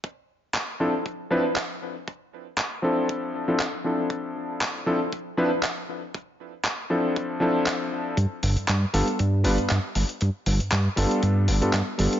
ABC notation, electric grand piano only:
X:1
M:4/4
L:1/16
Q:"Swing 16ths" 1/4=118
K:Ddor
V:1 name="Electric grand piano"
z6 [F,CDEA] z3 [F,CDEB] z4 z | z6 [F,CDEA]4- [F,CDEA] [F,CDEA] z2 [F,CDEA]2- | [F,CDEA]6 [F,CDEA] z3 [F,CDEB] z4 z | z6 [F,CDEA]4 [F,CDEA]6 |
z6 [G,B,DFA] z3 [G,B,DFB] z4 z | z6 [G,B,DFA]4- [G,B,DFA] [G,B,DFA] z2 [G,B,DFA]2 |]